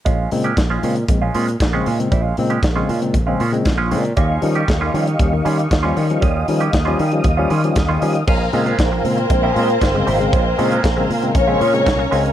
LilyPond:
<<
  \new Staff \with { instrumentName = "Tonewheel organ" } { \time 4/4 \key bes \dorian \tempo 4 = 117 << { r1 | r1 | des'''1 | ees'''1 |
bes''1~ | bes''1 | } \\ { r1 | r1 | <g' ees'' f''>1~ | <g' ees'' f''>1 |
<bes' f'' aes''>1~ | <bes' f'' aes''>1 | } >> }
  \new Staff \with { instrumentName = "String section" } { \time 4/4 \key bes \dorian r1 | r1 | r1 | r1 |
<c' c''>1~ | <c' c''>2 <des' des''>2 | }
  \new Staff \with { instrumentName = "Clean electric guitar" } { \time 4/4 \key bes \dorian <aes des' f'>8 r16 <aes des' g'>16 r16 <aes des' f'>16 <aes des' f'>16 r8 <aes des' f'>16 <aes des' f'>16 r8 <aes des' f'>16 <aes des' f'>16 r16 | <aes des' f'>8 r16 <aes des' g'>16 r16 <aes des' f'>16 <aes des' f'>16 r8 <aes des' f'>16 <aes des' f'>16 r8 <aes des' f'>16 <aes des' f'>16 r16 | <g des' f'>8 r16 <g des' g'>16 r16 <g des' f'>16 <g des' f'>16 r8. <g des' f'>16 r8 <g des' f'>16 <g des' f'>16 r16 | <g des' f'>8 r16 <g des' g'>16 r16 <g des' f'>16 <g des' f'>16 r8 <g des' f'>16 <g des' f'>16 r8 <g des' f'>16 <g des' f'>16 r16 |
<aes des' f'>16 r16 <aes des' f'>16 <aes des' f'>16 r4 r16 <aes des' f'>16 <aes des' f'>16 r8. <aes des' f'>8 | <aes des' f'>16 r16 <aes des' f'>16 <aes des' f'>16 r4 r16 <aes des' f'>16 <aes des' f'>16 r8. <aes des' f'>16 r16 | }
  \new Staff \with { instrumentName = "Tine electric piano" } { \clef bass \time 4/4 \key bes \dorian bes,16 r16 <des aes c'>16 <aes c'>16 <aes c'>16 bes,16 <des aes c'>16 r16 <aes c'>16 bes,16 <aes c'>16 r8 <des aes c'>16 bes,16 <des aes c'>16 | bes,16 r16 <des aes c'>16 <aes c'>16 r16 <des aes c'>16 bes,16 <des aes c'>16 r16 <des aes c'>16 bes,16 <des aes c'>16 <aes c'>16 bes,16 <des aes c'>16 r16 | ees16 r16 <f g des'>16 <g des'>16 r16 ees16 <f g des'>16 r16 <g des'>16 ees16 <g des'>16 r8 <f g des'>16 ees16 <f g des'>16 | ees16 r16 <f g des'>16 <g des'>16 r16 <f g des'>16 ees16 <f g des'>16 r16 <f g des'>16 ees16 <f g des'>16 <g des'>16 ees16 <f g des'>16 r16 |
bes,16 r16 <des aes c'>16 <aes c'>16 <aes c'>16 bes,16 <des aes c'>16 r16 <aes c'>16 bes,16 <aes c'>16 r8 <des aes c'>16 bes,16 <des aes c'>16 | bes,16 r16 <des aes c'>16 <aes c'>16 r16 <des aes c'>16 bes,16 <des aes c'>16 r16 <des aes c'>16 bes,16 <des aes c'>16 bes,16 r16 <des aes c'>16 <aes c'>16 | }
  \new Staff \with { instrumentName = "Fingered electric bass" } { \clef bass \time 4/4 \key bes \dorian bes,,8 bes,8 bes,,8 bes,8 bes,,8 bes,8 bes,,8 bes,8 | bes,,8 bes,8 bes,,8 bes,8 bes,,8 bes,8 bes,,8 bes,8 | ees,8 ees8 ees,8 ees8 ees,8 ees8 ees,8 ees8 | ees,8 ees8 ees,8 ees8 ees,8 ees8 ees,8 ees8 |
bes,,8 bes,8 bes,,8 bes,8 bes,,8 bes,8 g,,8 aes,,8 | bes,,8 bes,8 bes,,8 bes,8 bes,,8 bes,8 c,8 des,8 | }
  \new DrumStaff \with { instrumentName = "Drums" } \drummode { \time 4/4 <hh bd>8 hho16 hh16 <hh bd sn>8 hho16 hh16 <hh bd>8 hho16 hh16 <hh bd sn>8 hho16 hh16 | <hh bd>8 hho16 hh16 <hh bd sn>8 hho16 hh16 <hh bd>8 hho16 hh16 <hh bd sn>8 hho16 hh16 | <hh bd>8 hho16 hh16 <hh bd sn>8 hho16 hh16 <hh bd>8 hho16 hh16 <hh bd sn>8 hho16 hh16 | <hh bd>8 hho16 hh16 <hh bd sn>8 hho16 hh16 <hh bd>8 hho16 hh16 <hh bd sn>8 hho16 hh16 |
<cymc bd>8 hho16 hh16 <hh bd sn>8 hho16 hh16 <hh bd>8 hho16 hh16 <hh bd sn>8 hho16 hh16 | <hh bd>8 hho16 hh16 <hh bd sn>8 hho16 hh16 <hh bd>8 hho16 hh16 <hh bd sn>8 hho16 hh16 | }
>>